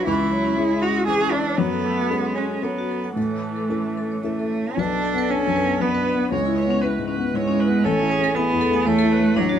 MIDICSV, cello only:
0, 0, Header, 1, 2, 480
1, 0, Start_track
1, 0, Key_signature, 3, "major"
1, 0, Tempo, 508906
1, 62, Time_signature, 3, 2, 24, 8
1, 1983, Tempo, 532387
1, 4863, Tempo, 509338
1, 8912, End_track
2, 0, Start_track
2, 0, Title_t, "Cello"
2, 0, Program_c, 0, 42
2, 50, Note_on_c, 0, 64, 79
2, 770, Note_on_c, 0, 66, 80
2, 784, Note_off_c, 0, 64, 0
2, 1001, Note_off_c, 0, 66, 0
2, 1007, Note_on_c, 0, 68, 84
2, 1242, Note_on_c, 0, 62, 73
2, 1256, Note_off_c, 0, 68, 0
2, 1488, Note_on_c, 0, 59, 84
2, 1502, Note_off_c, 0, 62, 0
2, 2206, Note_on_c, 0, 61, 61
2, 2220, Note_off_c, 0, 59, 0
2, 2451, Note_on_c, 0, 59, 62
2, 2465, Note_off_c, 0, 61, 0
2, 2931, Note_off_c, 0, 59, 0
2, 2937, Note_on_c, 0, 57, 53
2, 3887, Note_off_c, 0, 57, 0
2, 3910, Note_on_c, 0, 57, 69
2, 4386, Note_on_c, 0, 62, 82
2, 4399, Note_off_c, 0, 57, 0
2, 4869, Note_on_c, 0, 61, 93
2, 4884, Note_off_c, 0, 62, 0
2, 5347, Note_on_c, 0, 59, 81
2, 5362, Note_off_c, 0, 61, 0
2, 5815, Note_off_c, 0, 59, 0
2, 5821, Note_on_c, 0, 56, 70
2, 6532, Note_off_c, 0, 56, 0
2, 6779, Note_on_c, 0, 56, 82
2, 7260, Note_on_c, 0, 61, 97
2, 7274, Note_off_c, 0, 56, 0
2, 7737, Note_on_c, 0, 59, 96
2, 7751, Note_off_c, 0, 61, 0
2, 8218, Note_on_c, 0, 57, 111
2, 8232, Note_off_c, 0, 59, 0
2, 8707, Note_on_c, 0, 54, 89
2, 8722, Note_off_c, 0, 57, 0
2, 8912, Note_off_c, 0, 54, 0
2, 8912, End_track
0, 0, End_of_file